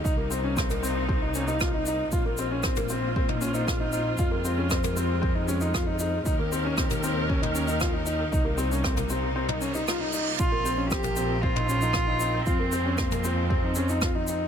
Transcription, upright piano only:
X:1
M:4/4
L:1/16
Q:1/4=116
K:Cphr
V:1 name="Upright piano"
E B, C D C B, C2 C E D E F E E2 | F B, C D C B, C2 C E D E F E E2 | F B, C D C B, C2 C E D E F E E2 | E B, C D C B, C2 D E D E F E E2 |
E B, C D C B, C2 C E D E F E E2 | F B, C D C B, C2 C E D E F E E2 | F B, C D C B, C2 C E D E F E E2 |]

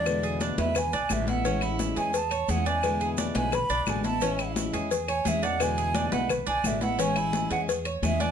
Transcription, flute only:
X:1
M:4/4
L:1/8
Q:1/4=173
K:A
V:1 name="Flute"
d2 z e g2 e f- | f2 z g a2 f g- | g2 z g b2 g a- | a2 z3 g e f |
g3 f z g e f | g3 f z2 e g |]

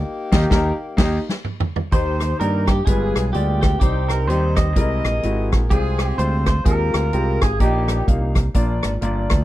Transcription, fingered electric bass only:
X:1
M:4/4
L:1/8
Q:"Swing" 1/4=127
K:Eb
V:1 name="Fingered electric bass" clef=bass
z E,, E,, z E,, z3 | E,,2 G,,2 G,,, =B,,, D,,2 | C,,2 E,,2 C,, B,,, ^G,,, B,,, | C,,2 D,,2 E,, D,, C,, A,,, |
B,,,2 C,,2 B,,, A,,, G,,, D,, |]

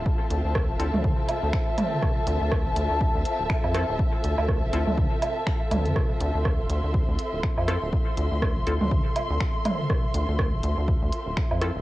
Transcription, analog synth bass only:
X:1
M:4/4
L:1/16
Q:"Swing 16ths" 1/4=122
K:Dm
V:1 name="Analog synth bass" clef=bass
z2 D,, D,,2 D,,, D,, D,,2 z2 D,, z4 | z2 D,, D,,2 D,,, D,, D,,2 D,, z D,,, z F,,2 D,,, | z2 D,, D,,2 D,,, D,, D,,2 z4 z D,, F,, | z2 D,, D,,2 D,,, D,, D,,2 D,, z D,,, z F,,2 D,,, |
z2 D,, D,,2 D,,, D,, D,,2 z2 D,, z4 | z2 D,, D,,2 D,,, D,, D,,2 D,, z D,,, z F,,2 D,,, |]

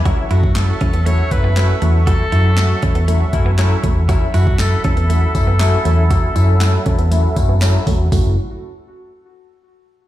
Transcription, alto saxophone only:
X:1
M:4/4
L:1/8
Q:1/4=119
K:F#m
V:1 name="Alto saxophone"
z F A2 c B2 z | A4 z4 | z F A A4- A- | A6 z2 |
F z6 z |]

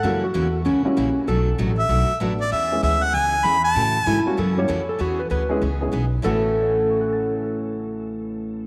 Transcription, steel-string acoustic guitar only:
X:1
M:4/4
L:1/8
Q:"Swing" 1/4=194
K:A
V:1 name="Steel-string acoustic guitar"
[C,E,^A,CF] z [C,E,A,CF] z [C,E,A,CF] z [C,E,A,CF] z | [B,,F,A,DF] z [B,,F,A,DF] z [B,,F,A,DF] z [B,,F,A,DF] z | [E,B,CG] z [E,B,CG] z [E,B,CG] z [E,B,CG] z | [C,E,A,CF] z [C,E,A,CF] z [C,E,^A,CF] z [C,E,A,CF] z |
[E,B,CG] z [E,B,CG] z [E,B,CG] z [E,B,CG] z | [A,,C,E,A,CF]8- | [A,,C,E,A,CF]8 |]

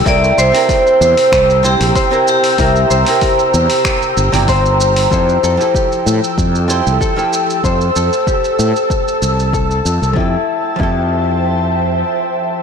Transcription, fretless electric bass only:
X:1
M:4/4
L:1/16
Q:1/4=95
K:F
V:1 name="Fretless electric bass" clef=bass
C,,2 C,, z3 E,, z C,,3 B,,, z4 | C,,2 C,, z3 E,, z3 G,,, G,,,4- G,,, | F,,2 F,, z3 A,, z F,,3 C,, z4 | F,,2 F,, z3 A,, z3 C,,4 F,, C,, |
F,, z3 F,,8 z4 |]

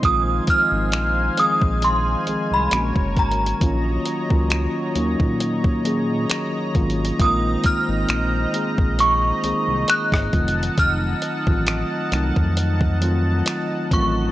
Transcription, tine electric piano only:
X:1
M:4/4
L:1/16
Q:"Swing 16ths" 1/4=67
K:Fphr
V:1 name="Tine electric piano"
[E,F,A,CF]2 z [E,F,A,CE]2 z [E,F,A,CA]3 z [E,F,A,CA]2 [=D,A,B,^C^F]3 z | [E,G,B,DF]2 z [E,G,B,DF]2 z [E,G,B,DE]3 z [E,G,B,DA]3 z [E,G,B,DF] z | [E,A,B,CF]2 z [E,A,B,CE]2 z [E,A,B,CA]3 z [E,A,B,CA]4 [E,G,=A,CF]2- | [E,G,=A,CF]2 z [E,G,A,CF]2 z [E,G,A,CE]3 z [E,G,A,CF]3 z [E,G,A,CF] z |]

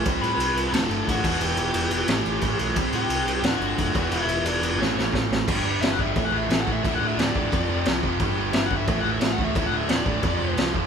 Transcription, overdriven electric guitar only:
X:1
M:4/4
L:1/8
Q:1/4=177
K:Amix
V:1 name="Overdriven electric guitar" clef=bass
[=C,G,=C]4 [D,,A,,D,]3 [E,,B,,E,]- | [E,,B,,E,]4 [A,,E,A,]4 | [=C,G,=C]4 [D,,A,,D,]3 [E,,B,,E,]- | [E,,B,,E,]4 [A,,E,A,]4 |
[G,,D,G,] [G,,D,G,] [G,,D,G,] [G,,D,G,] [A,,E,A,] [A,,E,A,] [A,,E,A,] [A,,E,A,] | [D,,A,,D,] [D,,A,,D,] [D,,A,,D,] [D,,A,,D,] [=F,,=C,=F,] [F,,C,F,] [F,,C,F,] [F,,C,F,] | [G,,D,G,] [G,,D,G,] [G,,D,G,] [G,,D,G,] [A,,E,A,] [A,,E,A,] [A,,E,A,] [A,,E,A,] | [D,,A,,D,] [D,,A,,D,] [D,,A,,D,] [D,,A,,D,] [=F,,=C,=F,] [F,,C,F,] [F,,C,F,] [F,,C,F,] |]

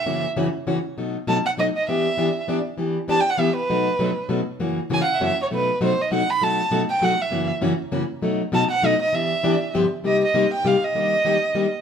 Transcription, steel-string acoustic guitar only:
X:1
M:3/4
L:1/8
Q:"Swing" 1/4=198
K:Em
V:1 name="Steel-string acoustic guitar"
[F,,^C,E,^A,^CF] z [F,,C,E,A,CF] z [F,,C,E,A,CF] z | [B,,F,A,^DF] z [B,,F,A,DF] z [B,,F,A,DF] z | [E,B,DG] z [E,B,DG] z [E,B,DG] z | [E,B,DG] z [E,B,DG] z [E,B,DG] z |
[B,,F,A,^DF] z [B,,F,A,DF] z [B,,F,A,DF] z | [F,,^C,E,^A,^CF] z [F,,C,E,A,CF] z [F,,C,E,A,CF] z | [B,,F,A,^DF] z [B,,F,A,DF] z [B,,F,A,DF] z | [B,,F,A,^DF] z [B,,F,A,DF] z [B,,F,A,DF] z |
[F,,^C,E,^A,^CF] z [F,,C,E,A,CF] z [F,,C,E,A,CF] z | [B,,F,A,^DF] z [B,,F,A,DF] z [B,,F,A,DF] z | [E,B,DG] z [E,B,DG] z [G,,D,=F,B,DG] z | [K:Cm] [C,G,B,EG] z [C,G,B,EG] z [C,G,B,EG] z |
[E,G,B,DG] z [E,G,B,DG] z [E,G,B,DG] z |]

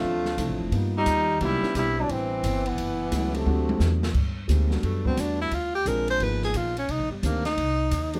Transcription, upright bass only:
X:1
M:4/4
L:1/8
Q:"Swing" 1/4=175
K:Dmix
V:1 name="Upright bass" clef=bass
D,,2 (3C,, A,,, =F,,, G,,2 ^D,,2 | C,, z B,,,2 A,,,2 G,,,2 | F,,,2 ^C,,2 D,,2 E,,2 | [K:Clyd] G,,2 D,,2 F,,2 E,,2 |
D,,2 _B,,,2 _A,,,2 B,,,2 | (3C,, _B,,, G,,, D,,2 C,,2 _E,,2 |]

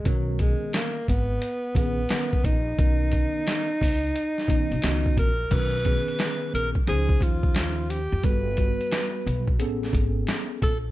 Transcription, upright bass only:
X:1
M:4/4
L:1/16
Q:"Swing 16ths" 1/4=88
K:B
V:1 name="Upright bass" clef=bass
B,,,3 z3 G,,,2 z2 A,,,2 z2 A,,,2 | B,,,3 z3 C,,2 z2 A,,, B,,, C,,2 A,,,2 | [K:C#dor] B,,,3 z3 A,,,2 C,,2 D,,4- D,, ^E,, | =G,,,3 z3 B,,,2 =A,,,2 ^G,,,2 z2 ^A,,,2 |]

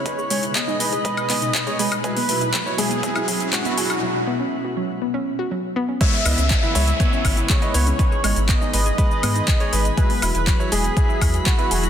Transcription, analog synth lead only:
X:1
M:4/4
L:1/8
Q:1/4=121
K:G#m
V:1 name="Analog synth lead"
c2 d6 | B3 G3 F2 | z8 | e3 e3 c2- |
c2 d6 | B3 G3 F2 |]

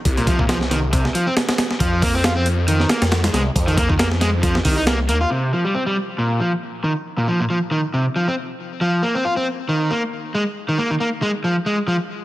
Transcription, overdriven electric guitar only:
X:1
M:4/4
L:1/16
Q:"Swing 16ths" 1/4=137
K:Cm
V:1 name="Overdriven electric guitar" clef=bass
z B,, F, B,, F, z E, z C, z F, C z4 | F,2 B, C F C z2 E,2 B, z3 A, z | z E, B, E, B, z A, z F, z E, E B, z B, F | C,2 F, G, C G, z2 B,,2 F, z3 E, z |
z B,, F, B,, F, z E, z C, z F, C z4 | F,2 B, C F C z2 E,2 B, z3 A, z | z E, B, E, B, z A, z F, z A, z F, z3 |]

